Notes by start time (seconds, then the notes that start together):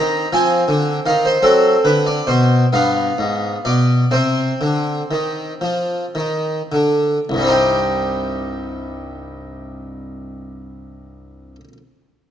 Already playing: D#3 C4 A#5
0.33 F3 C4 G#5
0.68 D3
1.06 D#3 F5
1.25 C5
1.42 F#3 C4 A4
1.85 D3 B4
2.07 D5
2.27 B2 C5
2.73 G2 B3 F5
3.18 G#2
3.65 B2 D5
4.11 C3 C4 C5
4.61 D3
5.11 D#3
5.61 F3
6.15 D#3
6.72 D3
7.29 C2
7.34 G2 G3
7.42 C4
7.46 D#4
7.51 G4